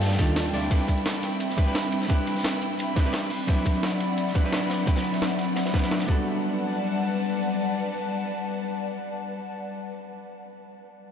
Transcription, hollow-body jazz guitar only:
Already playing: G3 D4 D#4 F4 A4
0.18 G3 D4 D#4 F4 A4
0.53 G3 C4 D4 E4 D5
0.70 G3 C4 D4 E4 B4
1.57 G3 C4 D4 E4 B4
1.66 G3 C4 D4 E4 B4
2.08 G3 C4 D4 E4 B4
2.96 G3 C4 D4 E4 B4
3.05 G3 C4 D4 E4 B4
3.47 F#3 C4 D4 E4 B4
4.34 F#3 C4 D4 E4 B4
4.43 F#3 C4 D4 E4 B4
4.86 F#3 C4 D4 E4 B4
5.73 F#3 C4 D4 E4 B4
6.07 G3 B3 D4 F#4 A4

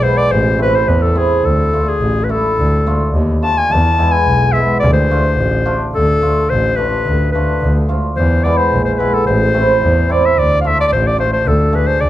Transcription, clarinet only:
0.03 C5
0.17 D5
0.31 C5
0.62 B4
0.75 C5
0.89 B4
1.02 A4
1.17 G#4
1.45 A4
1.88 G#4
2.24 B4
2.31 A4
3.43 A5
3.58 G#5
3.72 A5
4.12 G#5
4.52 E5
4.80 D5
4.93 C5
5.95 A4
6.50 C5
6.76 B4
7.32 B4
8.17 C5
8.44 D5
8.57 C5
8.85 C5
8.95 C5
8.99 B4
9.14 A4
9.27 C5
10.12 D5
10.26 E5
10.39 D5
10.61 F5
10.67 E5
10.81 D5
10.87 D5
10.92 C5
11.07 D5
11.20 C5
11.33 C5
11.48 A4
11.75 B4
11.87 C5
12.01 D5

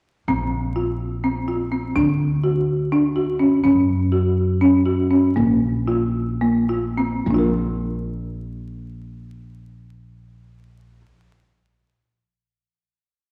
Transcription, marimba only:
0.28 C4
0.76 F4
1.24 C4
1.48 F4
1.72 C4
1.96 D4
2.44 F#4
2.92 D4
3.16 F#4
3.40 C#4
3.64 C#4
4.12 F#4
4.61 C#4
4.86 F#4
5.11 C#4
5.36 A#3
5.88 F4
6.41 A#3
6.69 F4
6.97 C4
7.26 A#3
7.31 D4 F4
7.38 A#4

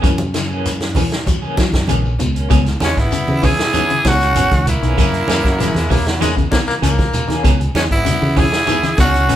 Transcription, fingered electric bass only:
0.04 F#2
1.58 F#3
1.74 F#2
1.89 A#1
2.20 C#2
2.51 C#2
2.82 E2
2.97 G#1
3.29 C#3
4.05 C#2
4.36 G#1
4.52 C#2
4.82 B1
4.98 F#2
5.29 F#2
5.45 F#2
5.75 E2
6.68 muted fingered electric bass stroke
6.82 C#2
7.45 C#2
7.75 E2
7.91 G#1
8.22 C#3
8.98 C#2
9.31 G#1

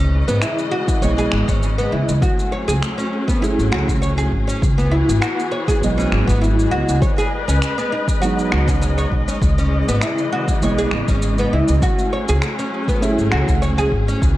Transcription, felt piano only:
1.01 E3 G#3 B3 D#5
3.40 A3 C#4 E4 G#4
5.80 F#3 G#3 B3
5.84 D#5
8.20 F#3 G#3 B3
8.24 D#4
10.60 E3 G#3 B3
10.64 D#5
13.00 A3 C#4 E4
13.04 G#4

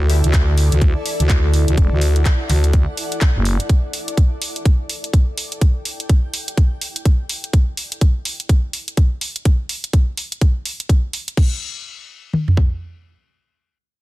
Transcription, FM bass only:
Already playing: D2
0.24 D2
0.72 D2
1.20 D2
1.68 D2
1.77 E1
1.92 D2
2.49 D2
3.36 F#1

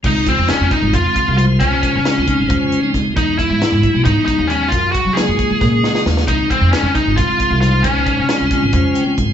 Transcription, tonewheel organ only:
0.03 C#3 F3 G#3 C4 D#4
0.25 C#3 F3 G#3 C4 F4
0.80 C#3 F3 G#3 C4 F4
1.36 C#3 F3 G#3 F4 C5
2.04 C#3 F3 G#3 C4 F4
2.24 C#3 F3 G#3 C4 D#4
2.47 C#3 F3 G#3 F4 C5
2.81 C#3 F3 G#3 C4 D#4
3.15 E3 F#3 G#3 B3 D#4
3.38 E3 F#3 G#3 B3 E4
3.93 E3 F#3 G#3 B3 D#4
4.48 E3 F#3 G#3 B3 D#4
5.15 C#3 F#3 G#3 A#3 F4
5.37 C#3 F#3 G#3 A#3 F4
5.59 C#3 F#3 G#3 A#3 C#4
5.83 D#5
5.92 C#3 F#3 G#3 A#3 F4
6.03 F5
6.26 C#3 F3 G#3 C4 D#4
6.48 C#3 F3 G#3 C4 D#4
7.05 C#3 F3 G#3 C4 F4
7.60 C#3 F3 G#3 D#4 C5
8.27 C#3 F3 G#3 C4 F4
8.50 C#3 F3 G#3 C4 F4
8.72 C#3 F3 G#3 F4 C5
8.95 G5
9.05 C#3 F3 G#3 C4 F4
9.17 G#5

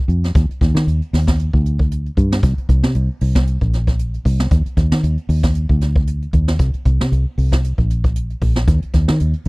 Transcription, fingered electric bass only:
0.08 F2
0.35 D#2
0.49 muted fingered electric bass stroke
0.61 D#2
0.75 D#3
0.87 D#2
1.13 D#2
1.54 D2
2.17 G2
2.43 C2
2.58 muted fingered electric bass stroke
2.69 C2
2.83 C3
2.95 C2
3.21 C2
3.61 A#1
4.25 C2
4.51 D#2
4.66 muted fingered electric bass stroke
4.77 D#2
4.92 D#3
5.03 D#2
5.29 D#2
5.69 D2
6.34 D#2
6.59 C2
6.75 muted fingered electric bass stroke
6.85 C2
7.00 C3
7.12 C2
7.38 C2
7.78 A#1
8.42 A#1
8.67 D#2
8.84 muted fingered electric bass stroke
8.94 D#2
9.09 D#3
9.21 D#2

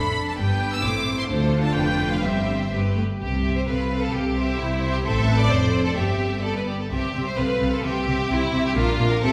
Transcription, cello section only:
Already playing: F2
0.40 G2
0.85 A2
1.31 D3
1.76 F2
2.24 G2
2.73 G2
3.21 C3
3.67 C3
4.14 C3
4.60 C3
5.05 A2
5.50 F2
5.96 G2
6.91 C3
7.15 C3
7.38 C3
7.61 C3
7.84 C3
8.07 C3
8.31 C3
8.53 C3
8.76 A#2
8.99 A#2
9.23 C3

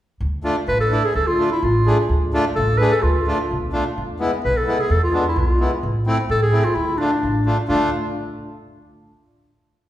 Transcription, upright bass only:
0.20 D2
0.67 A1
1.15 D2
1.63 A1
2.09 D2
2.56 A1
3.03 D2
3.51 B1
3.98 E2
4.45 B1
4.90 E2
5.36 B1
5.83 A1
6.29 A1
6.75 D2
7.23 A1
7.69 D2

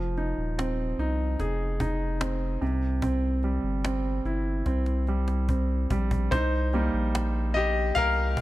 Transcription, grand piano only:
Already playing: F3
0.18 D#4
0.58 C4
0.99 D#4
1.40 G#4
1.80 D#4
2.21 C4
2.62 C3
3.03 C4
3.44 G3
3.85 C4
4.26 E4
4.66 C4
5.08 G3
5.49 C4
5.91 G3
6.31 D#4 C5
6.73 G3 A#3 D#4
7.54 G4 D#5
7.95 A#4 F5

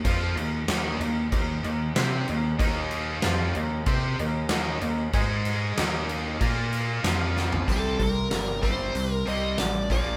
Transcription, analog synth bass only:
0.05 F2
0.36 D#2
0.68 D#2
1.00 D#2
1.32 D#2
1.65 D#2
1.96 C3
2.29 D#2
2.59 D#2
3.24 F2
3.56 D#2
3.87 C3
4.20 D#2
4.49 D#2
4.82 D#2
5.14 G#2
5.79 D#2
6.41 A#2
7.04 F2
7.68 C2
7.99 C2
8.32 G1
8.95 C2
9.28 C2
9.60 A1
9.91 A#1

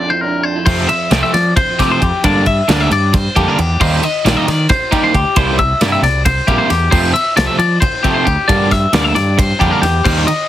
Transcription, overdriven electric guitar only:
0.67 C3 F3 A3 C4
0.89 muted overdriven electric guitar stroke
1.11 C3 F3 A3 C4
1.34 muted overdriven electric guitar stroke
1.56 muted overdriven electric guitar stroke
1.79 C3 F3 A3 C4
2.02 muted overdriven electric guitar stroke
2.24 D3 G3 A#3 D4
2.46 muted overdriven electric guitar stroke
2.68 D3 G3 A#3 D4
2.91 muted overdriven electric guitar stroke
3.14 muted overdriven electric guitar stroke
3.36 D3 G3 A#3 D4
3.59 muted overdriven electric guitar stroke
3.80 D#3 G3 A#3 D#4
4.03 muted overdriven electric guitar stroke
4.25 D#3 G3 A#3 D#4
4.47 muted overdriven electric guitar stroke
4.70 muted overdriven electric guitar stroke
4.92 D#3 G3 A#3 D#4
5.14 muted overdriven electric guitar stroke
5.37 C3 G3 A#3 E4
5.59 muted overdriven electric guitar stroke
5.81 C3 G3 A#3 E4
6.03 muted overdriven electric guitar stroke
6.26 muted overdriven electric guitar stroke
6.47 C3 G3 A#3 E4
6.70 muted overdriven electric guitar stroke
6.92 C3 F3 A3 C4
7.15 muted overdriven electric guitar stroke
7.37 C3 F3 A3 C4
7.59 muted overdriven electric guitar stroke
7.82 muted overdriven electric guitar stroke
8.04 C3 F3 A3 C4
8.27 muted overdriven electric guitar stroke
8.49 D3 G3 A#3 D4
8.72 muted overdriven electric guitar stroke
8.94 D3 G3 A#3 D4
9.17 muted overdriven electric guitar stroke
9.38 muted overdriven electric guitar stroke
9.60 D3 G3 A#3 D4
9.84 muted overdriven electric guitar stroke
10.06 D#3 G3 A#3 D#4
10.28 muted overdriven electric guitar stroke

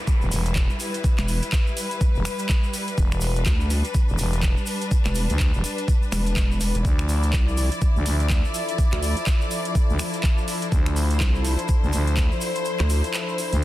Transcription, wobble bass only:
1.18 E1
3.46 D2
5.06 E1
6.12 E1
6.36 E1
6.75 E1
7.33 C2
8.93 D2
11.20 C2
12.80 D2

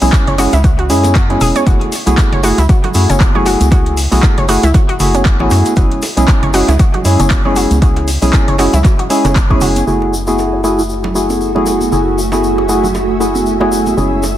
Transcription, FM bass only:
0.02 B1
0.27 F#1
0.53 C#2
0.90 F#2
1.41 E1
1.67 F#1
2.07 B1
2.33 F#1
2.58 C#2
2.95 F#2
3.09 F#1
3.61 C#2
4.12 B1
4.38 F#1
4.63 C#2
5.00 F#1
5.40 A1
5.51 F#2
5.77 F#1
6.17 B1
6.43 F#1
6.68 C#2
7.05 F#2
7.20 F#1
7.71 C#2
8.22 B1
8.48 F#1
8.73 C#2
9.25 F#1
9.61 F#1
9.87 F#1
11.92 F#1
13.97 F#1

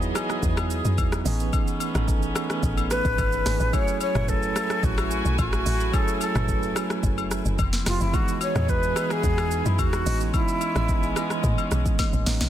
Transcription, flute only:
2.91 B4
3.74 C#5
4.01 C#5
4.29 A4
4.84 F#4
5.39 F#4
5.94 A4
6.22 A4
7.87 F4
8.01 E4
8.14 F#4
8.42 C#5
8.69 B4
9.11 G#4
9.66 E4
9.79 F#4
10.34 E4

